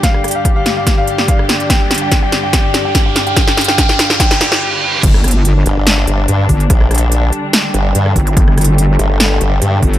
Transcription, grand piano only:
\new Staff \with { instrumentName = "Grand piano" } { \time 4/4 \key c \dorian \tempo 4 = 144 f''8 r16 f''16 r16 f''16 r16 f''16 r16 f''8 r16 f''16 r8. | g''8 r16 g''16 r16 g''16 r16 g''16 g''8 r16 g''16 r16 g''16 r16 g''16 | g''8 r16 g''16 g''8 r16 g''16 g''8 g''8 r4 | r1 |
r1 | r1 | }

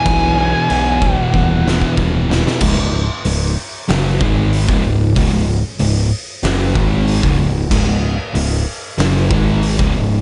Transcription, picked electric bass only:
\new Staff \with { instrumentName = "Picked electric bass" } { \clef bass \time 4/4 \key cis \minor \tempo 4 = 94 b,,4 b,,4 dis,,4 dis,,4 | cis,,16 cis,,8 r16 cis,,8 r8 fis,,8 gis,,8. cis,,16 cis,,8 | cis,,16 cis,,8 r16 cis,,8 r8 fis,,8 gis,,8. cis,,16 cis,,8 | cis,,16 cis,,8 r16 cis,,8 r8 fis,,8 gis,,8. cis,,16 cis,,8 | }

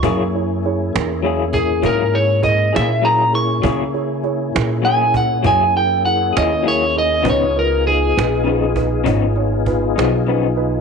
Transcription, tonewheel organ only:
\new Staff \with { instrumentName = "Tonewheel organ" } { \time 12/8 \key ges \major \tempo 4. = 67 <bes des' fes' aes'>1. | <bes des' fes' aes'>1. | <ces' ees' f' aes'>1. | }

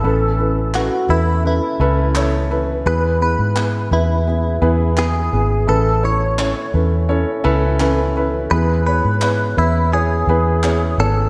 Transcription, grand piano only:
<<
  \new Staff \with { instrumentName = "Grand piano" } { \time 4/4 \key e \major \tempo 4 = 85 <cis' e' a' b'>8 <cis' e' a' b'>8 <cis' e' a' b'>8 <cis' e' a' b'>8 <cis' e' a' b'>8 <cis' e' a' b'>8 <cis' e' a' cis''>8 <cis' e' a' b'>8 | <b e' gis' b'>8 <b e' gis' b'>8 <b e' gis' b'>8 <b e' gis' b'>8 <b e' gis' b'>8 <b e' gis' b'>8 <b e' gis' b'>8 <b e' gis' b'>8 | <cis' e' a' b'>8 <cis' e' a' cis''>8 <cis' e' a' cis''>8 <cis' e' a' b'>8 <cis' e' a' cis''>8 <cis' e' a' b'>8 <cis' e' a' b'>8 <cis' e' a' b'>8 | <b e' gis' b'>8 <b e' gis' cis''>8 <b e' gis' cis''>8 <b e' gis' b'>8 <b e' gis' cis''>8 <b e' gis' b'>8 <b e' gis' cis''>8 <b e' cis'' gis''>8 | }
  \new Staff \with { instrumentName = "Grand piano" } { \clef bass \time 4/4 \key e \major a,4. r2 r8 | e4. r2 r8 | a,4. r2 r8 | e4. r2 r8 | }
>>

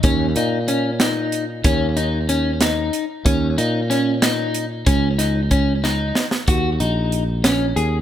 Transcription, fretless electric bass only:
\new Staff \with { instrumentName = "Fretless electric bass" } { \clef bass \time 5/8 \key des \major \tempo 4 = 93 ees,8 bes,2 | ees,2 r8 | ees,8 bes,2 | des,2 r8 |
ees,8 bes,,4. ees,8 | }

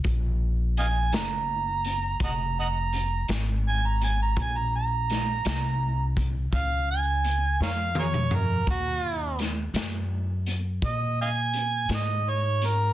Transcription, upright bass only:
\new Staff \with { instrumentName = "Upright bass" } { \clef bass \time 12/8 \key bes \minor \tempo 4. = 56 bes,,4. ges,,4. f,,4. aes,,4. | bes,,4. c,4. des,4. f,4. | ees,4. ges,4. bes,4. aes,4. | }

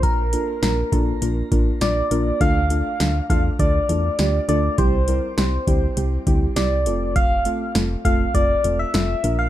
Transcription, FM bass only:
\new Staff \with { instrumentName = "FM bass" } { \clef bass \time 4/4 \key f \major \tempo 4 = 101 bes,,4 bes,,8 bes,,8 bes,,8 a,,8 bes,,8 bes,,8 | d,4 d,8 e,8 d,8 e,8 d,8 d,8 | c,4 c,8 d,8 c,8 d,8 c,8 f,,8~ | f,,4 f,,8 f,,8 f,,8 e,,8 f,,8 bes,,8 | }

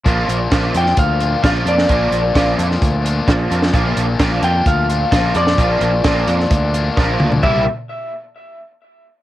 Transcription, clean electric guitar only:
\new Staff \with { instrumentName = "Clean electric guitar" } { \time 4/4 \key bes \lydian \tempo 4 = 130 r4. g''8 f''4 f''8 d''8~ | d''4. r2 r8 | r4. g''8 f''4. d''8~ | d''2.~ d''8 r8 |
e''8 r2. r8 | }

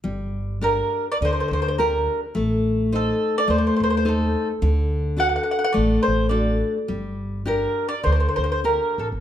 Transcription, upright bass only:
\new Staff \with { instrumentName = "Upright bass" } { \clef bass \time 4/4 \key g \minor \tempo 4 = 105 g,,2 d,8 d,4. | a,,2 ees,8 ees,4. | d,2 a,,8 a,,4. | g,,2 d,8 d,4 a,,16 g,,16 | }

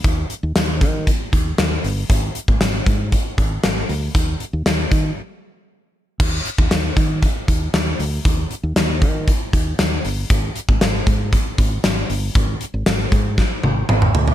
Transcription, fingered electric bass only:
\new Staff \with { instrumentName = "Fingered electric bass" } { \clef bass \time 4/4 \key ees \major \tempo 4 = 117 ees,8 r16 ees,16 ees,8 ees8. r16 ees,8 ees,8 g,,8 | aes,,8 r16 aes,,16 aes,,8 aes,8. r16 aes,,8 aes,,8 d,8 | ees,8 r16 ees,16 ees,8 ees8 r2 | ees,8 r16 ees,16 ees,8 ees8. r16 ees,8 ees,8 d,8 |
ees,8 r16 ees,16 ees,8 ees8. r16 ees,8 ees,8 g,,8 | aes,,8 r16 aes,,16 aes,,8 aes,8. r16 aes,,8 aes,,8 g,,8 | aes,,8 r16 aes,,16 aes,,8 aes,8. r16 aes,,8 aes,,8 d,8 | }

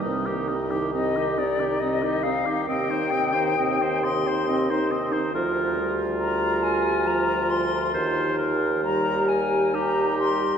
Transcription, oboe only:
\new Staff \with { instrumentName = "Oboe" } { \time 3/4 \key c \minor \tempo 4 = 68 ees'16 g'16 ees'16 g'16 ees'16 g'16 ees'16 g'16 ees'16 g'16 ees'16 g'16 | ees''16 c''16 ees''16 c''16 ees''16 c''16 ees''16 c''16 ees''16 c''16 ees''16 c''16 | bes'4 bes'2 | c''8 bes'8 bes'4 g'4 | }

